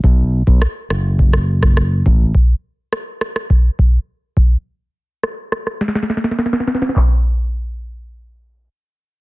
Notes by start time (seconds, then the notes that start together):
0.04 B1, kick
0.47 B1, kick
0.62 cross-stick
0.90 F#1, cross-stick
1.19 kick
1.33 cross-stick
1.62 kick, cross-stick
1.77 cross-stick
2.06 A1, kick
2.35 kick
2.93 cross-stick
3.21 cross-stick
3.36 cross-stick
3.50 kick
3.79 kick
4.37 kick
5.23 cross-stick
5.52 cross-stick
5.67 cross-stick
5.81 snare
5.88 snare
5.95 snare
6.03 snare
6.10 snare
6.17 snare
6.24 snare
6.31 snare
6.39 snare
6.46 snare
6.53 snare
6.60 snare
6.67 snare
6.75 snare
6.82 snare
6.89 snare
6.96 kick, clap